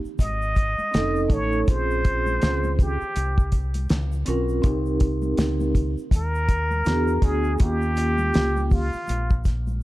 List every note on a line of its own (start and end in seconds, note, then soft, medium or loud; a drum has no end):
0.05 muted fingered electric bass stroke soft
0.05 shaker soft
0.19 0.76 G#1 loud
0.19 1.34 D#5 loud
0.19 kick medium
0.19 closed hi-hat medium
0.19 high conga soft
0.19 shaker medium
0.42 shaker medium
0.56 kick medium
0.56 closed hi-hat medium
0.56 shaker soft
0.78 muted fingered electric bass stroke soft
0.78 high conga medium
0.78 shaker soft
0.91 1.29 F1 medium
0.91 1.25 C4 medium
0.91 1.25 C#4 medium
0.91 1.26 D#4 medium
0.91 1.26 A4 medium
0.91 snare loud
0.91 closed hi-hat medium
0.91 shaker medium
1.16 shaker soft
1.28 1.66 A1 loud
1.28 1.61 A3 medium
1.28 1.62 C#4 medium
1.28 1.63 D#4 medium
1.28 1.63 A4 medium
1.28 kick medium
1.28 closed hi-hat medium
1.28 low conga medium
1.28 shaker soft
1.33 1.69 C#5 loud
1.52 shaker soft
1.66 2.38 A#1 medium
1.66 2.92 C4 medium
1.66 2.93 C#4 medium
1.66 2.93 F4 medium
1.66 2.94 G#4 medium
1.66 2.83 C5 loud
1.66 kick loud
1.66 closed hi-hat medium
1.66 shaker medium
1.91 shaker soft
2.05 kick medium
2.05 closed hi-hat medium
2.05 shaker soft
2.27 high conga medium
2.27 shaker soft
2.42 2.99 C#2 medium
2.42 snare loud
2.42 closed hi-hat medium
2.42 shaker medium
2.64 high conga medium
2.64 shaker soft
2.79 3.55 G4 medium
2.79 kick medium
2.79 closed hi-hat medium
2.79 high conga soft
2.79 low conga medium
2.79 shaker medium
3.01 muted fingered electric bass stroke soft
3.01 shaker soft
3.16 3.87 C2 medium
3.16 closed hi-hat medium
3.16 high conga soft
3.16 shaker medium
3.38 kick loud
3.38 shaker medium
3.52 kick medium
3.52 closed hi-hat medium
3.52 shaker soft
3.74 closed hi-hat medium
3.74 high conga medium
3.74 shaker soft
3.89 4.26 C#2 loud
3.89 snare loud
3.89 closed hi-hat medium
3.89 shaker medium
4.12 shaker soft
4.26 4.63 B1 medium
4.26 4.58 C4 medium
4.26 4.59 C#4 medium
4.26 4.59 F4 medium
4.26 4.60 A#4 loud
4.26 closed hi-hat medium
4.26 low conga medium
4.26 shaker soft
4.49 shaker soft
4.62 5.35 C2 loud
4.62 5.88 C4 medium
4.62 5.89 D#4 medium
4.62 5.89 G4 medium
4.62 5.90 A#4 medium
4.62 kick loud
4.62 closed hi-hat medium
4.62 shaker medium
4.86 shaker soft
5.00 kick loud
5.00 closed hi-hat medium
5.00 shaker soft
5.22 high conga medium
5.22 shaker soft
5.37 5.94 C#2 medium
5.37 snare loud
5.37 closed hi-hat medium
5.37 shaker medium
5.60 high conga medium
5.60 shaker soft
5.75 kick medium
5.75 closed hi-hat medium
5.75 high conga soft
5.75 low conga medium
5.75 shaker medium
5.98 muted fingered electric bass stroke soft
5.98 shaker soft
6.11 6.82 D#2 medium
6.11 kick medium
6.11 closed hi-hat medium
6.11 high conga soft
6.11 shaker medium
6.16 7.26 A#4 loud
6.35 shaker medium
6.49 kick medium
6.49 closed hi-hat medium
6.49 shaker soft
6.71 high conga medium
6.71 shaker soft
6.85 7.22 E2 loud
6.85 7.18 B3 medium
6.85 7.18 D4 medium
6.85 7.19 F#4 medium
6.85 7.19 G#4 medium
6.85 snare loud
6.85 closed hi-hat medium
6.85 shaker medium
7.08 shaker soft
7.22 7.58 D2 loud
7.22 7.55 B3 medium
7.22 7.55 D4 medium
7.22 7.56 F#4 medium
7.22 7.61 G#4 loud
7.22 kick medium
7.22 closed hi-hat medium
7.22 low conga medium
7.22 shaker soft
7.26 7.57 G#4 medium
7.44 shaker soft
7.58 8.31 D#2 loud
7.58 8.85 A#3 medium
7.58 8.85 C#4 medium
7.58 8.86 F4 medium
7.58 8.86 G4 medium
7.58 8.75 G4 loud
7.58 kick loud
7.58 closed hi-hat medium
7.58 shaker medium
7.82 shaker soft
7.96 closed hi-hat medium
7.96 shaker soft
8.18 high conga medium
8.18 shaker soft
8.34 8.91 C#2 medium
8.34 snare loud
8.34 closed hi-hat medium
8.34 shaker medium
8.56 high conga medium
8.56 shaker soft
8.71 9.47 F4 medium
8.71 kick medium
8.71 open hi-hat soft
8.71 high conga soft
8.71 low conga medium
8.71 shaker medium
8.93 muted fingered electric bass stroke soft
8.93 shaker soft
9.08 9.79 A#1 medium
9.08 closed hi-hat medium
9.08 high conga soft
9.08 shaker medium
9.30 kick loud
9.30 shaker medium
9.44 kick medium
9.44 snare soft
9.44 closed hi-hat medium
9.44 shaker soft
9.67 high conga medium
9.67 shaker soft